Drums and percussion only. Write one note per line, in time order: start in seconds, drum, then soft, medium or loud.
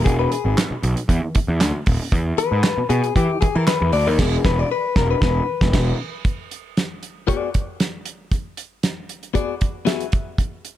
0.06 kick loud
0.06 closed hi-hat medium
0.32 closed hi-hat medium
0.58 snare loud
0.58 clap medium
0.58 closed hi-hat medium
0.83 closed hi-hat medium
0.97 closed hi-hat medium
1.09 kick medium
1.09 closed hi-hat medium
1.35 kick medium
1.35 closed hi-hat medium
1.61 snare loud
1.61 clap medium
1.61 closed hi-hat loud
1.86 kick loud
1.86 open hi-hat medium
2.12 kick loud
2.12 closed hi-hat medium
2.38 closed hi-hat medium
2.63 snare loud
2.63 clap medium
2.63 closed hi-hat medium
2.90 closed hi-hat medium
3.04 closed hi-hat soft
3.16 kick medium
3.16 closed hi-hat medium
3.42 kick medium
3.42 closed hi-hat medium
3.67 snare loud
3.67 clap medium
3.67 closed hi-hat loud
3.93 open hi-hat medium
4.19 kick loud
4.19 snare loud
4.19 crash medium
4.45 kick loud
4.45 snare loud
4.96 kick loud
4.96 snare loud
5.22 kick loud
5.22 snare loud
5.61 kick loud
5.61 snare loud
5.73 kick loud
5.73 snare loud
5.73 crash medium
6.25 kick loud
6.25 closed hi-hat medium
6.51 closed hi-hat medium
6.77 snare loud
6.77 closed hi-hat medium
7.03 closed hi-hat medium
7.28 kick medium
7.28 closed hi-hat medium
7.54 kick medium
7.54 closed hi-hat medium
7.80 snare loud
7.80 closed hi-hat medium
8.05 closed hi-hat medium
8.32 kick loud
8.32 closed hi-hat medium
8.57 closed hi-hat medium
8.83 snare loud
8.83 closed hi-hat medium
9.09 closed hi-hat medium
9.23 closed hi-hat soft
9.35 kick medium
9.35 closed hi-hat medium
9.61 kick medium
9.61 closed hi-hat medium
9.87 snare medium
9.87 closed hi-hat medium
10.00 closed hi-hat medium
10.12 kick loud
10.12 closed hi-hat medium
10.38 kick loud
10.38 closed hi-hat medium
10.65 closed hi-hat medium